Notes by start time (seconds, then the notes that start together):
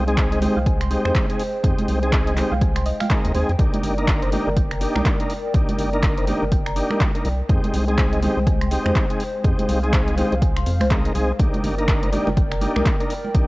Already playing: C2 G#3 C5 G5
0.07 G#3 C4 D#4 G#4, closed hi-hat
0.18 C5, kick, clap, closed hi-hat
0.32 D#5, closed hi-hat
0.41 G#3 C4 D#4 G4, open hi-hat, high conga, low conga
0.56 C2 F5
0.66 G#5, kick, closed hi-hat
0.81 C6, finger snap, closed hi-hat
0.90 G#3 C4 D#4 G4, open hi-hat
1.05 F2 C5, finger snap, high conga
1.15 kick, clap, closed hi-hat
1.29 G#3 C4 D#4 G#4, closed hi-hat
1.39 open hi-hat
1.63 F2 G#3 C4 D#4 G4, kick, closed hi-hat
1.78 closed hi-hat, high conga
1.88 C2, open hi-hat
2.02 G#3 C4 D#4 G#4, closed hi-hat
2.13 C5, kick, clap, closed hi-hat
2.27 D#5, closed hi-hat
2.36 G#3 C4 D#4 G4, clap, open hi-hat, high conga, low conga
2.52 C2 F5
2.61 G#5, kick, closed hi-hat
2.76 C6, finger snap, closed hi-hat
2.86 D#5, open hi-hat
3.00 F5, finger snap, open hi-hat, high conga
3.10 G#3 C4 D#4 A#4 G#5, kick, clap, closed hi-hat
3.25 D#2, closed hi-hat
3.34 D#2 G#3 C4 D#4 G#4 C5, open hi-hat
3.49 F2, closed hi-hat
3.58 C2 A#3 D4 D#4 G4 A#4 D5, kick, closed hi-hat
3.74 closed hi-hat, high conga
3.83 G1, open hi-hat
3.97 A#3 D4 D#4 A#4, closed hi-hat
4.08 A#4, kick, clap, closed hi-hat
4.22 C5, closed hi-hat
4.32 A#3 D4 D#4 G4, open hi-hat, high conga, low conga
4.47 G1 A#4
4.57 G5, kick, closed hi-hat
4.71 A#5, finger snap, closed hi-hat
4.81 A#3 D4 D#4 G4, open hi-hat
4.96 C2 A#4, finger snap, high conga
5.05 kick, clap, closed hi-hat
5.19 A#3 D4 D#4 A#4, closed hi-hat
5.30 open hi-hat
5.54 C2 A#3 D4 D#4 G4, kick, closed hi-hat
5.69 closed hi-hat, high conga
5.79 G1, open hi-hat
5.93 A#3 D4 D#4 A#4, closed hi-hat
6.03 A#4, kick, clap, closed hi-hat
6.17 C5, closed hi-hat
6.27 A#3 D4 D#4 G4, open hi-hat, high conga, low conga
6.42 G1 A#4
6.52 G5, kick, closed hi-hat
6.66 A#5, finger snap, closed hi-hat
6.76 A#3 D4 D#4 G4, open hi-hat
6.90 A#4, finger snap, high conga
7.00 kick, clap, closed hi-hat
7.15 A#3 D4 D#4 A#4, closed hi-hat
7.25 C2, open hi-hat
7.49 F2 G#3 C4 D#4 G4 C5 G5, kick, closed hi-hat
7.64 closed hi-hat, high conga
7.74 C2, open hi-hat
7.88 G#3 C4 D#4 G#4, closed hi-hat
7.98 C5, kick, clap, closed hi-hat
8.13 D#5, closed hi-hat
8.22 G#3 C4 D#4 G4, open hi-hat, high conga, low conga
8.37 C2 C5
8.47 G#5, kick, closed hi-hat
8.61 C6, finger snap, closed hi-hat
8.71 G#3 C4 D#4 G4, open hi-hat
8.86 F2 C5, finger snap, high conga
8.96 kick, clap, closed hi-hat
9.10 G#3 C4 D#4 G#4, closed hi-hat
9.20 open hi-hat
9.44 F2 G#3 C4 D#4 G4 F5, kick, closed hi-hat
9.59 closed hi-hat, high conga
9.69 C2, open hi-hat
9.83 G#3 C4 D#4 G#4, closed hi-hat
9.93 C5, kick, clap, closed hi-hat
10.08 D#5, closed hi-hat
10.17 G#3 C4 D#4 G4, open hi-hat, high conga, low conga
10.32 C2 C5, closed hi-hat
10.42 G#5, kick, closed hi-hat
10.57 C6, finger snap, closed hi-hat
10.66 F2, open hi-hat
10.80 C2 C5, finger snap, open hi-hat, high conga
10.90 G#3 C4 D#4 A#4, kick, clap, closed hi-hat
11.05 closed hi-hat
11.14 C2 G#3 C4 D#4 G#4, open hi-hat
11.39 C2 A#3 D4 D#4 G4 A#4 D5 G5, kick, closed hi-hat, muted conga
11.53 closed hi-hat, high conga
11.64 G1, open hi-hat, muted conga
11.78 A#3 D4 D#4 A#4, closed hi-hat
11.88 A#4, kick, clap, closed hi-hat
12.03 C5, closed hi-hat, muted conga
12.12 A#3 D4 D#4 G4, open hi-hat, high conga, low conga
12.27 G1 A#4, muted conga
12.37 G5, kick, closed hi-hat
12.52 A#5, finger snap, closed hi-hat
12.61 A#3 D4 D#4 G4, open hi-hat, muted conga
12.76 C2 A#4, finger snap, high conga
12.86 kick, clap, closed hi-hat, muted conga
13.00 A#3 D4 D#4 A#4, closed hi-hat
13.10 open hi-hat
13.24 muted conga
13.34 C2 A#3 D4 D#4 G4, kick, closed hi-hat